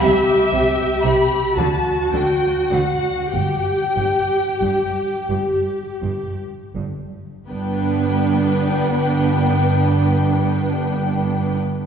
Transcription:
0, 0, Header, 1, 6, 480
1, 0, Start_track
1, 0, Key_signature, 1, "major"
1, 0, Tempo, 1015228
1, 15, Time_signature, 6, 3, 24, 8
1, 495, Tempo, 1088929
1, 975, Tempo, 1204819
1, 1455, Tempo, 1282051
1, 1935, Tempo, 1408451
1, 2415, Tempo, 1474201
1, 4314, End_track
2, 0, Start_track
2, 0, Title_t, "Violin section"
2, 0, Program_c, 0, 48
2, 17, Note_on_c, 0, 76, 75
2, 492, Note_on_c, 0, 83, 65
2, 496, Note_off_c, 0, 76, 0
2, 724, Note_off_c, 0, 83, 0
2, 734, Note_on_c, 0, 81, 55
2, 976, Note_off_c, 0, 81, 0
2, 980, Note_on_c, 0, 79, 61
2, 1211, Note_off_c, 0, 79, 0
2, 1211, Note_on_c, 0, 78, 61
2, 1451, Note_on_c, 0, 79, 55
2, 1456, Note_off_c, 0, 78, 0
2, 2153, Note_off_c, 0, 79, 0
2, 2896, Note_on_c, 0, 79, 53
2, 4221, Note_off_c, 0, 79, 0
2, 4314, End_track
3, 0, Start_track
3, 0, Title_t, "Violin section"
3, 0, Program_c, 1, 48
3, 12, Note_on_c, 1, 76, 65
3, 484, Note_off_c, 1, 76, 0
3, 485, Note_on_c, 1, 83, 54
3, 725, Note_off_c, 1, 83, 0
3, 726, Note_on_c, 1, 81, 47
3, 973, Note_off_c, 1, 81, 0
3, 973, Note_on_c, 1, 79, 57
3, 1203, Note_off_c, 1, 79, 0
3, 1209, Note_on_c, 1, 78, 47
3, 1455, Note_off_c, 1, 78, 0
3, 1459, Note_on_c, 1, 79, 51
3, 2170, Note_off_c, 1, 79, 0
3, 2892, Note_on_c, 1, 71, 47
3, 4217, Note_off_c, 1, 71, 0
3, 4314, End_track
4, 0, Start_track
4, 0, Title_t, "Viola section"
4, 0, Program_c, 2, 48
4, 0, Note_on_c, 2, 67, 65
4, 712, Note_off_c, 2, 67, 0
4, 723, Note_on_c, 2, 66, 47
4, 1451, Note_off_c, 2, 66, 0
4, 1451, Note_on_c, 2, 67, 47
4, 2520, Note_off_c, 2, 67, 0
4, 2891, Note_on_c, 2, 62, 42
4, 2892, Note_on_c, 2, 59, 45
4, 4216, Note_off_c, 2, 62, 0
4, 4218, Note_off_c, 2, 59, 0
4, 4314, End_track
5, 0, Start_track
5, 0, Title_t, "Cello section"
5, 0, Program_c, 3, 48
5, 6, Note_on_c, 3, 48, 54
5, 44, Note_off_c, 3, 48, 0
5, 246, Note_on_c, 3, 48, 43
5, 284, Note_off_c, 3, 48, 0
5, 489, Note_on_c, 3, 48, 52
5, 524, Note_off_c, 3, 48, 0
5, 730, Note_on_c, 3, 50, 51
5, 765, Note_off_c, 3, 50, 0
5, 971, Note_on_c, 3, 50, 44
5, 1003, Note_off_c, 3, 50, 0
5, 1199, Note_on_c, 3, 50, 44
5, 1231, Note_off_c, 3, 50, 0
5, 1447, Note_on_c, 3, 43, 37
5, 1478, Note_off_c, 3, 43, 0
5, 1684, Note_on_c, 3, 43, 34
5, 1714, Note_off_c, 3, 43, 0
5, 1932, Note_on_c, 3, 43, 38
5, 1959, Note_off_c, 3, 43, 0
5, 2163, Note_on_c, 3, 43, 37
5, 2191, Note_off_c, 3, 43, 0
5, 2409, Note_on_c, 3, 43, 34
5, 2435, Note_off_c, 3, 43, 0
5, 2650, Note_on_c, 3, 43, 36
5, 2676, Note_off_c, 3, 43, 0
5, 2893, Note_on_c, 3, 43, 42
5, 4218, Note_off_c, 3, 43, 0
5, 4314, End_track
6, 0, Start_track
6, 0, Title_t, "Double bass section"
6, 0, Program_c, 4, 48
6, 14, Note_on_c, 4, 36, 60
6, 52, Note_off_c, 4, 36, 0
6, 250, Note_on_c, 4, 36, 54
6, 288, Note_off_c, 4, 36, 0
6, 494, Note_on_c, 4, 36, 49
6, 530, Note_off_c, 4, 36, 0
6, 727, Note_on_c, 4, 38, 50
6, 762, Note_off_c, 4, 38, 0
6, 975, Note_on_c, 4, 38, 38
6, 1007, Note_off_c, 4, 38, 0
6, 1205, Note_on_c, 4, 38, 45
6, 1237, Note_off_c, 4, 38, 0
6, 1454, Note_on_c, 4, 31, 46
6, 1484, Note_off_c, 4, 31, 0
6, 1692, Note_on_c, 4, 31, 38
6, 1721, Note_off_c, 4, 31, 0
6, 1933, Note_on_c, 4, 31, 39
6, 1960, Note_off_c, 4, 31, 0
6, 2165, Note_on_c, 4, 31, 41
6, 2192, Note_off_c, 4, 31, 0
6, 2413, Note_on_c, 4, 31, 34
6, 2439, Note_off_c, 4, 31, 0
6, 2653, Note_on_c, 4, 31, 37
6, 2679, Note_off_c, 4, 31, 0
6, 2895, Note_on_c, 4, 31, 46
6, 4220, Note_off_c, 4, 31, 0
6, 4314, End_track
0, 0, End_of_file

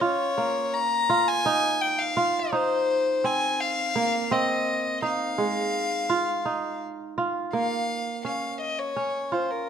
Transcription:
0, 0, Header, 1, 3, 480
1, 0, Start_track
1, 0, Tempo, 715990
1, 13, Time_signature, 7, 3, 24, 8
1, 6498, End_track
2, 0, Start_track
2, 0, Title_t, "Violin"
2, 0, Program_c, 0, 40
2, 17, Note_on_c, 0, 73, 98
2, 499, Note_on_c, 0, 82, 101
2, 509, Note_off_c, 0, 73, 0
2, 857, Note_on_c, 0, 80, 109
2, 867, Note_off_c, 0, 82, 0
2, 1215, Note_on_c, 0, 79, 95
2, 1225, Note_off_c, 0, 80, 0
2, 1331, Note_on_c, 0, 77, 92
2, 1341, Note_off_c, 0, 79, 0
2, 1698, Note_on_c, 0, 72, 102
2, 1708, Note_off_c, 0, 77, 0
2, 2179, Note_on_c, 0, 80, 102
2, 2189, Note_off_c, 0, 72, 0
2, 2417, Note_on_c, 0, 77, 102
2, 2427, Note_off_c, 0, 80, 0
2, 2894, Note_on_c, 0, 75, 94
2, 2904, Note_off_c, 0, 77, 0
2, 3373, Note_off_c, 0, 75, 0
2, 3378, Note_on_c, 0, 77, 94
2, 4547, Note_off_c, 0, 77, 0
2, 5055, Note_on_c, 0, 77, 80
2, 5506, Note_off_c, 0, 77, 0
2, 5537, Note_on_c, 0, 77, 72
2, 5757, Note_off_c, 0, 77, 0
2, 5774, Note_on_c, 0, 75, 79
2, 5894, Note_on_c, 0, 73, 80
2, 5905, Note_off_c, 0, 75, 0
2, 6256, Note_on_c, 0, 72, 70
2, 6266, Note_off_c, 0, 73, 0
2, 6372, Note_on_c, 0, 70, 70
2, 6382, Note_off_c, 0, 72, 0
2, 6498, Note_off_c, 0, 70, 0
2, 6498, End_track
3, 0, Start_track
3, 0, Title_t, "Kora"
3, 0, Program_c, 1, 46
3, 0, Note_on_c, 1, 61, 77
3, 8, Note_on_c, 1, 65, 80
3, 252, Note_on_c, 1, 58, 66
3, 698, Note_off_c, 1, 61, 0
3, 732, Note_off_c, 1, 65, 0
3, 734, Note_on_c, 1, 65, 86
3, 976, Note_on_c, 1, 63, 73
3, 1450, Note_off_c, 1, 65, 0
3, 1453, Note_on_c, 1, 65, 81
3, 1546, Note_off_c, 1, 58, 0
3, 1690, Note_off_c, 1, 63, 0
3, 1693, Note_on_c, 1, 63, 82
3, 2173, Note_on_c, 1, 60, 69
3, 2468, Note_off_c, 1, 65, 0
3, 2652, Note_on_c, 1, 58, 72
3, 2780, Note_off_c, 1, 63, 0
3, 2889, Note_off_c, 1, 60, 0
3, 2892, Note_on_c, 1, 60, 87
3, 3368, Note_on_c, 1, 63, 81
3, 3608, Note_on_c, 1, 56, 72
3, 3945, Note_off_c, 1, 58, 0
3, 4086, Note_on_c, 1, 65, 89
3, 4098, Note_off_c, 1, 60, 0
3, 4324, Note_off_c, 1, 63, 0
3, 4327, Note_on_c, 1, 63, 66
3, 4809, Note_off_c, 1, 65, 0
3, 4812, Note_on_c, 1, 65, 72
3, 5050, Note_on_c, 1, 58, 69
3, 5084, Note_off_c, 1, 56, 0
3, 5415, Note_off_c, 1, 63, 0
3, 5528, Note_on_c, 1, 61, 62
3, 5826, Note_off_c, 1, 65, 0
3, 6007, Note_off_c, 1, 61, 0
3, 6010, Note_on_c, 1, 61, 70
3, 6248, Note_on_c, 1, 65, 69
3, 6343, Note_off_c, 1, 58, 0
3, 6498, Note_off_c, 1, 61, 0
3, 6498, Note_off_c, 1, 65, 0
3, 6498, End_track
0, 0, End_of_file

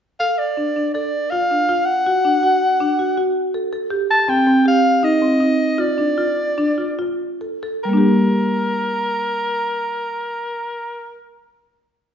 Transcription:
0, 0, Header, 1, 3, 480
1, 0, Start_track
1, 0, Key_signature, -2, "minor"
1, 0, Tempo, 372208
1, 258, Time_signature, 5, 2, 24, 8
1, 6977, Tempo, 389105
1, 8417, Tempo, 423131
1, 9857, Tempo, 448096
1, 14464, End_track
2, 0, Start_track
2, 0, Title_t, "Soprano saxophone"
2, 0, Program_c, 0, 64
2, 254, Note_on_c, 0, 77, 81
2, 494, Note_on_c, 0, 74, 70
2, 514, Note_off_c, 0, 77, 0
2, 1202, Note_off_c, 0, 74, 0
2, 1210, Note_on_c, 0, 74, 77
2, 1682, Note_on_c, 0, 77, 90
2, 1701, Note_off_c, 0, 74, 0
2, 2388, Note_on_c, 0, 78, 88
2, 2407, Note_off_c, 0, 77, 0
2, 4321, Note_off_c, 0, 78, 0
2, 5297, Note_on_c, 0, 81, 90
2, 5537, Note_on_c, 0, 79, 85
2, 5557, Note_off_c, 0, 81, 0
2, 6014, Note_off_c, 0, 79, 0
2, 6030, Note_on_c, 0, 77, 88
2, 6506, Note_on_c, 0, 75, 76
2, 6526, Note_off_c, 0, 77, 0
2, 7463, Note_on_c, 0, 74, 75
2, 7482, Note_off_c, 0, 75, 0
2, 8888, Note_off_c, 0, 74, 0
2, 9850, Note_on_c, 0, 70, 77
2, 13463, Note_off_c, 0, 70, 0
2, 14464, End_track
3, 0, Start_track
3, 0, Title_t, "Marimba"
3, 0, Program_c, 1, 12
3, 258, Note_on_c, 1, 69, 69
3, 514, Note_off_c, 1, 69, 0
3, 739, Note_on_c, 1, 62, 54
3, 867, Note_off_c, 1, 62, 0
3, 982, Note_on_c, 1, 62, 51
3, 1109, Note_off_c, 1, 62, 0
3, 1224, Note_on_c, 1, 69, 60
3, 1478, Note_off_c, 1, 69, 0
3, 1704, Note_on_c, 1, 65, 73
3, 1831, Note_off_c, 1, 65, 0
3, 1946, Note_on_c, 1, 62, 52
3, 2072, Note_off_c, 1, 62, 0
3, 2178, Note_on_c, 1, 65, 68
3, 2434, Note_off_c, 1, 65, 0
3, 2663, Note_on_c, 1, 66, 74
3, 2790, Note_off_c, 1, 66, 0
3, 2897, Note_on_c, 1, 62, 63
3, 3025, Note_off_c, 1, 62, 0
3, 3135, Note_on_c, 1, 66, 61
3, 3392, Note_off_c, 1, 66, 0
3, 3617, Note_on_c, 1, 62, 66
3, 3745, Note_off_c, 1, 62, 0
3, 3857, Note_on_c, 1, 66, 60
3, 3985, Note_off_c, 1, 66, 0
3, 4096, Note_on_c, 1, 66, 68
3, 4352, Note_off_c, 1, 66, 0
3, 4570, Note_on_c, 1, 69, 63
3, 4699, Note_off_c, 1, 69, 0
3, 4807, Note_on_c, 1, 69, 69
3, 4936, Note_off_c, 1, 69, 0
3, 5036, Note_on_c, 1, 67, 74
3, 5295, Note_off_c, 1, 67, 0
3, 5525, Note_on_c, 1, 60, 71
3, 5655, Note_off_c, 1, 60, 0
3, 5766, Note_on_c, 1, 60, 58
3, 5895, Note_off_c, 1, 60, 0
3, 6005, Note_on_c, 1, 67, 64
3, 6262, Note_off_c, 1, 67, 0
3, 6486, Note_on_c, 1, 63, 70
3, 6616, Note_off_c, 1, 63, 0
3, 6733, Note_on_c, 1, 60, 60
3, 6862, Note_off_c, 1, 60, 0
3, 6968, Note_on_c, 1, 63, 65
3, 7221, Note_off_c, 1, 63, 0
3, 7436, Note_on_c, 1, 65, 84
3, 7565, Note_off_c, 1, 65, 0
3, 7678, Note_on_c, 1, 62, 63
3, 7808, Note_off_c, 1, 62, 0
3, 7920, Note_on_c, 1, 65, 68
3, 8183, Note_off_c, 1, 65, 0
3, 8418, Note_on_c, 1, 62, 71
3, 8540, Note_off_c, 1, 62, 0
3, 8643, Note_on_c, 1, 65, 62
3, 8768, Note_off_c, 1, 65, 0
3, 8881, Note_on_c, 1, 65, 78
3, 9136, Note_off_c, 1, 65, 0
3, 9362, Note_on_c, 1, 69, 57
3, 9492, Note_off_c, 1, 69, 0
3, 9609, Note_on_c, 1, 69, 68
3, 9742, Note_off_c, 1, 69, 0
3, 9861, Note_on_c, 1, 55, 62
3, 9906, Note_on_c, 1, 58, 58
3, 9948, Note_on_c, 1, 62, 63
3, 9992, Note_on_c, 1, 67, 63
3, 13474, Note_off_c, 1, 55, 0
3, 13518, Note_off_c, 1, 58, 0
3, 13561, Note_off_c, 1, 62, 0
3, 13605, Note_off_c, 1, 67, 0
3, 14464, End_track
0, 0, End_of_file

